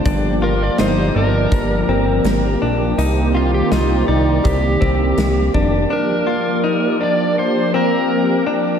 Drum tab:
HH |x-x-x-x-|x-x-x-x-|--------|
SD |--o---o-|--o---o-|--------|
BD |o---o---|----oo-o|--------|